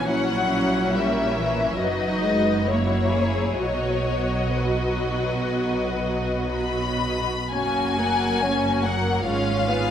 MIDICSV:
0, 0, Header, 1, 6, 480
1, 0, Start_track
1, 0, Key_signature, 5, "major"
1, 0, Tempo, 859599
1, 44, Time_signature, 4, 2, 24, 8
1, 1483, Tempo, 946372
1, 2923, Tempo, 1048951
1, 3403, Tempo, 983607
1, 3883, Tempo, 892857
1, 4363, Tempo, 846262
1, 5206, End_track
2, 0, Start_track
2, 0, Title_t, "Violin section"
2, 0, Program_c, 0, 48
2, 50, Note_on_c, 0, 78, 60
2, 517, Note_off_c, 0, 78, 0
2, 527, Note_on_c, 0, 76, 45
2, 993, Note_off_c, 0, 76, 0
2, 993, Note_on_c, 0, 75, 47
2, 1484, Note_off_c, 0, 75, 0
2, 1492, Note_on_c, 0, 73, 45
2, 1959, Note_off_c, 0, 73, 0
2, 1965, Note_on_c, 0, 73, 46
2, 2433, Note_off_c, 0, 73, 0
2, 2446, Note_on_c, 0, 71, 33
2, 3407, Note_off_c, 0, 71, 0
2, 3408, Note_on_c, 0, 83, 48
2, 3866, Note_off_c, 0, 83, 0
2, 3887, Note_on_c, 0, 80, 60
2, 4598, Note_on_c, 0, 78, 50
2, 4604, Note_off_c, 0, 80, 0
2, 4834, Note_on_c, 0, 77, 59
2, 4836, Note_off_c, 0, 78, 0
2, 5206, Note_off_c, 0, 77, 0
2, 5206, End_track
3, 0, Start_track
3, 0, Title_t, "Violin section"
3, 0, Program_c, 1, 48
3, 44, Note_on_c, 1, 64, 41
3, 44, Note_on_c, 1, 73, 36
3, 514, Note_off_c, 1, 73, 0
3, 530, Note_on_c, 1, 70, 35
3, 992, Note_off_c, 1, 64, 0
3, 995, Note_off_c, 1, 70, 0
3, 995, Note_on_c, 1, 71, 35
3, 997, Note_on_c, 1, 66, 37
3, 1481, Note_off_c, 1, 66, 0
3, 1485, Note_off_c, 1, 71, 0
3, 1487, Note_on_c, 1, 66, 33
3, 1490, Note_on_c, 1, 73, 31
3, 1713, Note_off_c, 1, 66, 0
3, 1715, Note_on_c, 1, 68, 33
3, 1956, Note_off_c, 1, 68, 0
3, 1960, Note_off_c, 1, 73, 0
3, 1960, Note_on_c, 1, 75, 33
3, 1962, Note_on_c, 1, 66, 32
3, 3760, Note_off_c, 1, 75, 0
3, 3781, Note_off_c, 1, 66, 0
3, 3884, Note_on_c, 1, 73, 35
3, 3886, Note_on_c, 1, 66, 37
3, 4111, Note_off_c, 1, 73, 0
3, 4112, Note_off_c, 1, 66, 0
3, 4130, Note_on_c, 1, 70, 34
3, 4131, Note_on_c, 1, 78, 33
3, 4364, Note_off_c, 1, 70, 0
3, 4364, Note_on_c, 1, 73, 36
3, 4365, Note_off_c, 1, 78, 0
3, 4366, Note_on_c, 1, 66, 37
3, 4600, Note_on_c, 1, 70, 36
3, 4600, Note_on_c, 1, 78, 35
3, 4602, Note_off_c, 1, 73, 0
3, 4603, Note_off_c, 1, 66, 0
3, 4830, Note_on_c, 1, 73, 38
3, 4831, Note_on_c, 1, 65, 38
3, 4837, Note_off_c, 1, 70, 0
3, 4837, Note_off_c, 1, 78, 0
3, 5058, Note_off_c, 1, 73, 0
3, 5059, Note_off_c, 1, 65, 0
3, 5075, Note_on_c, 1, 68, 33
3, 5077, Note_on_c, 1, 71, 32
3, 5206, Note_off_c, 1, 68, 0
3, 5206, Note_off_c, 1, 71, 0
3, 5206, End_track
4, 0, Start_track
4, 0, Title_t, "Viola section"
4, 0, Program_c, 2, 48
4, 47, Note_on_c, 2, 61, 42
4, 50, Note_on_c, 2, 54, 38
4, 527, Note_off_c, 2, 54, 0
4, 531, Note_on_c, 2, 55, 41
4, 760, Note_off_c, 2, 55, 0
4, 762, Note_on_c, 2, 52, 36
4, 974, Note_off_c, 2, 61, 0
4, 995, Note_off_c, 2, 52, 0
4, 998, Note_on_c, 2, 63, 36
4, 1002, Note_on_c, 2, 54, 39
4, 1235, Note_off_c, 2, 54, 0
4, 1237, Note_on_c, 2, 56, 36
4, 1485, Note_off_c, 2, 56, 0
4, 1487, Note_off_c, 2, 63, 0
4, 1497, Note_on_c, 2, 58, 34
4, 1497, Note_on_c, 2, 64, 32
4, 1963, Note_off_c, 2, 58, 0
4, 1963, Note_off_c, 2, 64, 0
4, 1969, Note_on_c, 2, 54, 29
4, 1970, Note_on_c, 2, 66, 30
4, 3765, Note_off_c, 2, 54, 0
4, 3784, Note_off_c, 2, 66, 0
4, 3882, Note_on_c, 2, 58, 39
4, 3882, Note_on_c, 2, 61, 34
4, 4110, Note_off_c, 2, 58, 0
4, 4110, Note_off_c, 2, 61, 0
4, 4125, Note_on_c, 2, 58, 34
4, 4126, Note_on_c, 2, 54, 33
4, 4362, Note_off_c, 2, 54, 0
4, 4362, Note_off_c, 2, 58, 0
4, 4373, Note_on_c, 2, 58, 35
4, 4374, Note_on_c, 2, 61, 37
4, 4599, Note_off_c, 2, 58, 0
4, 4604, Note_on_c, 2, 54, 35
4, 4606, Note_on_c, 2, 58, 35
4, 4607, Note_off_c, 2, 61, 0
4, 4836, Note_on_c, 2, 56, 37
4, 4839, Note_off_c, 2, 54, 0
4, 4839, Note_on_c, 2, 61, 40
4, 4840, Note_off_c, 2, 58, 0
4, 5062, Note_off_c, 2, 56, 0
4, 5063, Note_off_c, 2, 61, 0
4, 5076, Note_on_c, 2, 59, 37
4, 5079, Note_on_c, 2, 65, 39
4, 5206, Note_off_c, 2, 59, 0
4, 5206, Note_off_c, 2, 65, 0
4, 5206, End_track
5, 0, Start_track
5, 0, Title_t, "Cello section"
5, 0, Program_c, 3, 48
5, 50, Note_on_c, 3, 46, 45
5, 976, Note_off_c, 3, 46, 0
5, 996, Note_on_c, 3, 42, 36
5, 1959, Note_off_c, 3, 42, 0
5, 1960, Note_on_c, 3, 47, 33
5, 3760, Note_off_c, 3, 47, 0
5, 3885, Note_on_c, 3, 42, 43
5, 4816, Note_off_c, 3, 42, 0
5, 4838, Note_on_c, 3, 44, 43
5, 5206, Note_off_c, 3, 44, 0
5, 5206, End_track
6, 0, Start_track
6, 0, Title_t, "Double bass section"
6, 0, Program_c, 4, 48
6, 52, Note_on_c, 4, 34, 41
6, 977, Note_off_c, 4, 34, 0
6, 1000, Note_on_c, 4, 30, 38
6, 1961, Note_off_c, 4, 30, 0
6, 1965, Note_on_c, 4, 35, 34
6, 3763, Note_off_c, 4, 35, 0
6, 3893, Note_on_c, 4, 30, 43
6, 4820, Note_off_c, 4, 30, 0
6, 4841, Note_on_c, 4, 32, 42
6, 5206, Note_off_c, 4, 32, 0
6, 5206, End_track
0, 0, End_of_file